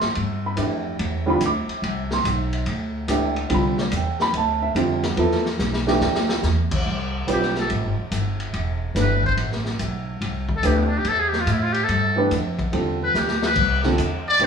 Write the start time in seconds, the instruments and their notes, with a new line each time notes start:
Already playing: grand piano C6
0.01 muted upright bass stroke, snare, ride
0.15 upright bass G2, ride
0.46 grand piano B5
0.56 upright bass F2, grand piano E3 A3 D4 G4, hi-hat pedal, ride
0.99 upright bass E2, ride
1.26 grand piano D3 G3 C4 F4
1.30 grand piano B5
1.40 upright bass D2, hi-hat pedal, ride
1.46 grand piano D6
1.68 muted upright bass stroke, ride
1.82 upright bass C2, ride
2.11 grand piano C6, snare
2.24 upright bass B1, hi-hat pedal, ride
2.53 ride
2.66 upright bass D2, ride
3.08 upright bass C#2, grand piano E3 A3 D4 G4, hi-hat pedal, ride
3.36 ride
3.49 upright bass C2, grand piano D3 G3 C4 F4, ride
3.54 grand piano B5
3.78 grand piano D5, snare
3.92 upright bass E2, hi-hat pedal, ride
3.97 grand piano G5
4.20 grand piano B5, snare
4.33 upright bass D2, ride
4.37 grand piano A5
4.62 grand piano E5
4.75 upright bass F2, grand piano D3 G3 C4 F4, hi-hat pedal, ride
5.03 snare, ride
5.17 upright bass E2, grand piano F3 B3 E4 A4, ride
5.31 snare
5.45 snare
5.59 upright bass B1, snare, hi-hat pedal
5.73 snare
5.87 grand piano E3 A3 D4 G4, snare
6.01 upright bass D2, snare
6.15 snare
6.29 snare
6.43 upright bass E2, snare, hi-hat pedal
6.71 kick, crash
6.86 upright bass C2
7.27 upright bass B1, grand piano G3 C4 F4 B4 D5, hi-hat pedal, ride
7.32 muted trumpet G4
7.42 snare
7.55 snare
7.59 muted trumpet A4
7.70 upright bass A1, ride
7.85 upright bass G1
7.98 upright bass E1
8.11 upright bass G1, hi-hat pedal, ride
8.40 ride
8.53 upright bass E1, ride
8.95 upright bass G1, grand piano E3 A3 D4 G4 B4, snare, hi-hat pedal, ride
9.00 muted trumpet B4
9.23 muted trumpet C5, kick
9.37 upright bass A1, ride
9.52 snare
9.65 snare
9.79 upright bass B1, hi-hat pedal, ride
10.21 upright bass C2, ride
10.49 kick
10.56 muted trumpet A4
10.62 upright bass D2, grand piano E3 A3 D4 G4 B4, hi-hat pedal, ride
10.67 muted trumpet G4
10.77 muted trumpet B3
10.86 muted trumpet D4
10.98 muted trumpet G4
11.04 upright bass E2, ride
11.08 muted trumpet A4
11.20 muted trumpet G#4
11.28 muted trumpet G4
11.33 snare
11.41 muted trumpet F4
11.46 upright bass A2, hi-hat pedal, ride
11.52 muted trumpet E4
11.63 muted trumpet F4
11.73 muted trumpet G4, ride
11.84 muted trumpet A4
11.89 upright bass G2, ride
12.16 grand piano E3 A3 D4 G4 B4
12.31 upright bass F2, hi-hat pedal, ride
12.59 kick, ride
12.72 upright bass E2, grand piano D3 G3 C4 F4 A4, ride
13.03 muted trumpet B4
13.14 upright bass D2, snare, hi-hat pedal
13.19 muted trumpet G4
13.28 snare
13.42 muted trumpet B4, snare
13.56 upright bass C2, kick, crash
13.83 grand piano D3 G3 C4 F4 A4, snare
13.98 upright bass E2, hi-hat pedal, ride
14.29 muted trumpet D5
14.39 upright bass B1, grand piano E3 A3 D4 G4 B4, ride